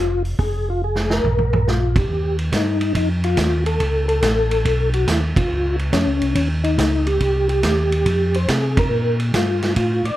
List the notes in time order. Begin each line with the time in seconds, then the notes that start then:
Already playing: F1 F4
0.25 open hi-hat
0.39 F1 G#4, kick, open hi-hat
0.70 F4
0.84 G#4
0.96 snare
1.10 A#4, snare
1.24 A#1, floor tom
1.38 floor tom
1.53 A#4, floor tom
1.68 F4, snare
1.96 G4, kick, ride
2.09 D#2
2.39 ride
2.52 G2 D#4, kick, snare, hi-hat pedal, ride
2.81 ride
2.95 F2 D#4, kick, ride
3.24 F4, ride
3.37 D#2, kick, snare, hi-hat pedal, ride
3.66 A4, ride
3.80 C#2, kick, ride
4.08 A4, ride
4.22 A1, kick, snare, hi-hat pedal, ride
4.51 ride
4.65 B1, kick, ride
4.93 F#4, ride
5.08 D#2 E4, kick, snare, hi-hat pedal, ride
5.36 D#2 F4, kick, ride
5.50 C#2
5.79 ride
5.92 F2 C#4, kick, snare, hi-hat pedal, ride
6.07 C#2
6.21 C2, ride
6.35 D#2 C#4, kick, ride
6.64 D#4, ride
6.78 C#2, kick, snare, hi-hat pedal, ride
7.07 G4, ride
7.20 C2, kick, ride
7.49 G4, ride
7.63 D#2, kick, snare, hi-hat pedal, ride
7.92 ride
8.06 F2, kick, ride
8.34 C5, ride
8.48 C3 G#4, kick, snare, hi-hat pedal, ride
8.77 A#4, kick, ride
8.90 A#2
9.20 ride
9.34 G2 F4, kick, snare, hi-hat pedal, ride
9.62 snare, ride
9.76 A2 F4, kick, ride
10.04 A2 D5, ride